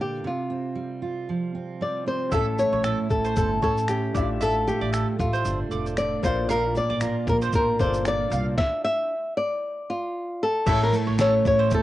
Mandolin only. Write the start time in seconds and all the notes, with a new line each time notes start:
2.32 E5
2.73 C#5
2.84 A4
3.25 C5
3.62 C#5
4.14 D5
4.41 E5
4.81 D5
4.93 A4
5.33 C5
5.71 D5
6.24 F5
6.49 F5
6.90 D5
7.01 A#4
7.42 C5
7.80 D5
8.31 F5
10.67 E5
11.07 C#5
11.19 A4
11.59 C5